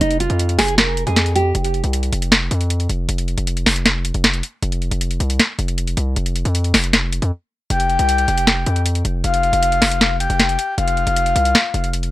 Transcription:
0.01 0.29 F1 loud
0.01 0.19 D#4 medium
0.01 closed hi-hat medium
0.11 closed hi-hat medium
0.20 0.56 F4 medium
0.20 closed hi-hat medium
0.30 0.58 F2 loud
0.30 closed hi-hat medium
0.39 closed hi-hat medium
0.49 closed hi-hat medium
0.59 1.05 F1 loud
0.59 0.76 G#4 medium
0.59 snare medium
0.59 open hi-hat medium
0.68 closed hi-hat medium
0.78 1.05 A#4 medium
0.78 snare loud
0.78 closed hi-hat medium
0.97 closed hi-hat medium
1.07 1.53 F2 loud
1.07 1.34 G#4 medium
1.07 closed hi-hat medium
1.16 snare loud
1.16 closed hi-hat medium
1.26 closed hi-hat medium
1.36 1.53 G4 medium
1.36 closed hi-hat medium
1.55 1.83 F1 loud
1.55 closed hi-hat medium
1.64 closed hi-hat medium
1.74 closed hi-hat soft
1.84 2.11 C2 loud
1.84 closed hi-hat medium
1.93 closed hi-hat medium
2.03 closed hi-hat medium
2.13 2.49 F1 loud
2.13 closed hi-hat medium
2.22 closed hi-hat medium
2.32 snare loud
2.32 closed hi-hat medium
2.51 2.88 F2 loud
2.51 closed hi-hat medium
2.61 closed hi-hat medium
2.70 closed hi-hat medium
2.80 closed hi-hat medium
2.89 3.08 F1 loud
2.89 closed hi-hat medium
3.09 3.36 F1 loud
3.09 closed hi-hat medium
3.18 closed hi-hat medium
3.28 closed hi-hat soft
3.38 3.65 F1 loud
3.38 closed hi-hat medium
3.47 closed hi-hat medium
3.57 closed hi-hat medium
3.66 4.13 F1 loud
3.66 snare medium
3.66 open hi-hat medium
3.76 closed hi-hat medium
3.86 snare loud
3.86 closed hi-hat medium
4.05 closed hi-hat medium
4.14 4.42 F1 loud
4.14 closed hi-hat medium
4.24 snare loud
4.24 closed hi-hat medium
4.34 closed hi-hat medium
4.43 closed hi-hat medium
4.63 4.90 F1 loud
4.63 closed hi-hat medium
4.72 closed hi-hat medium
4.82 closed hi-hat soft
4.91 5.19 F1 loud
4.91 closed hi-hat medium
5.01 closed hi-hat medium
5.11 closed hi-hat medium
5.20 5.39 C2 loud
5.20 closed hi-hat medium
5.30 closed hi-hat medium
5.40 snare loud
5.40 closed hi-hat medium
5.59 5.96 F1 loud
5.59 closed hi-hat medium
5.68 closed hi-hat medium
5.78 closed hi-hat medium
5.87 closed hi-hat medium
5.97 6.16 C2 loud
5.97 closed hi-hat medium
6.16 6.44 F1 loud
6.16 closed hi-hat medium
6.26 closed hi-hat medium
6.36 closed hi-hat medium
6.45 6.73 F2 loud
6.45 closed hi-hat medium
6.55 closed hi-hat medium
6.64 closed hi-hat medium
6.74 7.20 F1 loud
6.74 snare medium
6.74 open hi-hat medium
6.84 closed hi-hat medium
6.93 snare loud
6.93 closed hi-hat medium
7.13 closed hi-hat medium
7.22 7.31 F2 loud
7.22 closed hi-hat medium
7.70 7.98 F1 loud
7.70 8.82 G5 loud
7.70 closed hi-hat medium
7.80 closed hi-hat medium
7.90 closed hi-hat soft
7.99 8.27 C2 loud
7.99 closed hi-hat medium
8.09 closed hi-hat medium
8.18 closed hi-hat medium
8.28 8.65 F1 loud
8.28 closed hi-hat medium
8.38 closed hi-hat medium
8.47 snare loud
8.47 closed hi-hat medium
8.66 9.03 F2 loud
8.66 closed hi-hat medium
8.76 closed hi-hat medium
8.86 closed hi-hat medium
8.95 closed hi-hat medium
9.05 9.23 F1 loud
9.05 closed hi-hat medium
9.24 9.52 F1 loud
9.24 10.16 F5 loud
9.24 closed hi-hat medium
9.34 closed hi-hat medium
9.43 closed hi-hat soft
9.53 9.81 F1 loud
9.53 closed hi-hat medium
9.63 closed hi-hat medium
9.72 closed hi-hat medium
9.82 10.28 F1 loud
9.82 snare medium
9.82 open hi-hat medium
9.91 closed hi-hat medium
10.01 snare loud
10.01 closed hi-hat medium
10.20 10.74 G5 medium
10.20 closed hi-hat medium
10.30 10.58 F1 loud
10.30 closed hi-hat medium
10.40 snare loud
10.40 closed hi-hat medium
10.49 closed hi-hat medium
10.59 closed hi-hat medium
10.78 11.06 F1 loud
10.78 11.89 F5 loud
10.78 closed hi-hat medium
10.88 closed hi-hat medium
10.97 closed hi-hat soft
11.07 11.34 F1 loud
11.07 closed hi-hat medium
11.16 closed hi-hat medium
11.26 closed hi-hat medium
11.36 11.54 C2 loud
11.36 closed hi-hat medium
11.45 closed hi-hat medium
11.55 snare loud
11.55 closed hi-hat medium
11.74 12.11 F1 loud
11.74 closed hi-hat medium
11.84 closed hi-hat medium
11.93 closed hi-hat medium
12.03 closed hi-hat medium

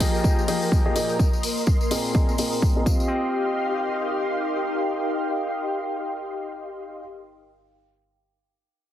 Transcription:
0.00 1.18 F3 medium
0.00 0.22 F3 medium
0.00 0.22 A#3 medium
0.00 1.97 F4 medium
0.00 0.22 G4 medium
0.00 0.22 G#4 medium
0.00 2.83 A#4 medium
0.00 2.83 D#5 medium
0.00 0.22 D#5 medium
0.00 1.18 G5 medium
0.00 1.18 A#5 medium
0.00 kick medium
0.00 open hi-hat loud
0.00 tambourine loud
0.10 1.96 C5 medium
0.15 tambourine soft
0.24 0.40 F3 medium
0.24 0.40 G4 medium
0.24 0.40 G#4 medium
0.24 0.40 D#5 medium
0.24 kick loud
0.24 tambourine medium
0.39 tambourine soft
0.48 0.82 F3 medium
0.48 0.82 A#3 medium
0.48 0.82 G4 medium
0.48 0.82 G#4 medium
0.48 0.82 D#5 medium
0.48 open hi-hat loud
0.48 tambourine medium
0.62 tambourine soft
0.72 kick loud
0.72 tambourine soft
0.86 0.93 F3 medium
0.86 0.93 A#3 medium
0.86 0.93 G4 medium
0.86 0.93 G#4 medium
0.86 0.93 D#5 medium
0.96 1.18 A#2 medium
0.96 1.18 A#3 medium
0.96 1.18 G4 medium
0.96 1.18 G#4 medium
0.96 1.18 D#5 medium
0.96 open hi-hat loud
0.96 tambourine medium
1.09 tambourine soft
1.19 2.85 A#3 medium
1.19 2.86 A#4 medium
1.19 2.85 C6 medium
1.19 kick loud
1.19 tambourine soft
1.33 tambourine soft
1.43 open hi-hat loud
1.43 tambourine medium
1.57 2.86 C6 medium
1.57 tambourine soft
1.65 2.86 F5 medium
1.65 kick loud
1.65 tambourine medium
1.81 tambourine soft
1.91 2.12 A#2 medium
1.91 2.12 C4 medium
1.91 2.12 G#4 medium
1.91 2.12 A#4 medium
1.91 2.12 D#5 medium
1.91 open hi-hat loud
1.91 tambourine medium
2.05 2.86 D#6 medium
2.05 tambourine soft
2.15 2.30 A#2 medium
2.15 2.30 C4 medium
2.15 2.31 G#4 medium
2.15 2.30 A#4 medium
2.15 2.30 D#5 medium
2.15 kick loud
2.15 tambourine soft
2.29 tambourine soft
2.38 2.73 A#2 medium
2.38 2.73 C4 medium
2.38 2.73 G#4 medium
2.38 2.73 A#4 medium
2.38 2.73 D#5 medium
2.38 open hi-hat loud
2.38 tambourine medium
2.53 tambourine soft
2.62 kick loud
2.62 tambourine medium
2.76 2.84 A#2 medium
2.76 2.84 C4 medium
2.76 2.84 G#4 medium
2.76 2.84 A#4 medium
2.76 2.84 D#5 medium
2.86 7.00 C4 medium
2.86 7.00 D#4 medium
2.86 7.00 F4 medium
2.86 7.00 G4 medium
2.86 7.00 D#5 medium
2.86 7.00 F5 medium
2.86 7.00 C6 medium
2.86 kick loud
2.86 tambourine medium
2.94 7.08 A#4 medium
3.00 tambourine soft
3.26 7.40 F5 medium
3.32 7.46 G5 medium

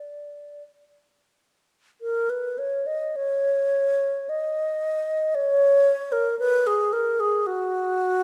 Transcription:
0.00 0.63 D5 medium
2.01 2.31 A#4 medium
2.30 2.60 B4 medium
2.58 2.88 C#5 medium
2.86 3.17 D#5 medium
3.16 4.31 C#5 loud
4.29 5.36 D#5 medium
5.35 6.14 C#5 loud
6.12 6.38 A#4 medium
6.39 6.68 B4 loud
6.67 6.94 G#4 medium
6.93 7.21 A#4 medium
7.20 7.48 G#4 medium
7.47 8.23 F#4 loud

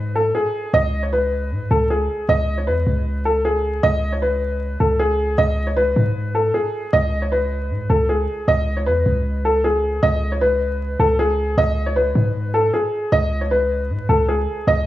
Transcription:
0.00 0.33 G#2 loud
0.00 0.12 B4 medium
0.15 0.31 A4 medium
0.35 0.71 G#4 medium
0.74 1.53 C#2 loud
0.74 1.01 D#5 loud
1.03 1.11 C#5 medium
1.13 1.67 B4 medium
1.51 1.70 G#2 loud
1.71 2.08 C#2 loud
1.71 1.86 A4 medium
1.90 2.26 G#4 medium
2.29 2.69 C#2 loud
2.29 2.56 D#5 loud
2.58 2.65 C#5 medium
2.67 2.86 E2 loud
2.67 3.22 B4 medium
2.87 3.79 C#2 loud
3.25 3.41 A4 medium
3.45 3.81 G#4 medium
3.83 4.76 C#2 loud
3.83 4.11 D#5 loud
4.13 4.20 C#5 medium
4.22 4.77 B4 medium
4.80 5.36 C#2 loud
4.80 4.96 A4 medium
4.99 5.36 G#4 medium
5.38 5.94 C#2 loud
5.38 5.65 D#5 loud
5.67 5.75 C#5 medium
5.77 6.31 B4 medium
5.96 6.52 G#2 loud
6.35 6.50 A4 medium
6.54 6.91 G#4 medium
6.93 7.72 C#2 loud
6.93 7.20 D#5 loud
7.22 7.30 C#5 medium
7.32 7.86 B4 medium
7.70 7.89 G#2 loud
7.90 8.27 C#2 loud
7.90 8.05 A4 medium
8.09 8.46 G#4 medium
8.48 8.88 C#2 loud
8.48 8.75 D#5 loud
8.77 8.85 C#5 medium
8.86 9.05 E2 loud
8.86 9.41 B4 medium
9.06 9.99 C#2 loud
9.45 9.60 A4 medium
9.64 10.00 G#4 medium
10.03 10.96 C#2 loud
10.03 10.30 D#5 loud
10.32 10.40 C#5 medium
10.41 10.96 B4 medium
10.99 11.55 C#2 loud
10.99 11.15 A4 medium
11.19 11.55 G#4 medium
11.57 12.13 C#2 loud
11.57 11.85 D#5 loud
11.86 11.94 C#5 medium
11.96 12.51 B4 medium
12.16 12.71 G#2 loud
12.54 12.70 A4 medium
12.74 13.10 G#4 medium
13.12 13.91 C#2 loud
13.12 13.40 D#5 loud
13.41 13.49 C#5 medium
13.51 14.06 B4 medium
13.90 14.08 G#2 loud
14.09 14.46 C#2 loud
14.09 14.25 A4 medium
14.29 14.65 G#4 medium
14.67 14.87 C#2 loud
14.67 14.87 D#5 loud

